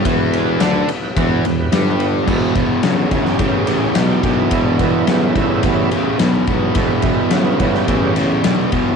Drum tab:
CC |----------------|x---------------|----------------|----------------|
RD |x-x-x-x-x-x-x-x-|--x-x-x-x-x-x-x-|x-x-x-x-x-x-x-x-|x-x-x-x-x-x-x-x-|
SD |----o-------o---|----o--o----o---|----o-------o---|----o--o----o---|
BD |o-------o-------|o-o---o-o-----o-|o-o---o-o-----o-|o-o---o-o-----o-|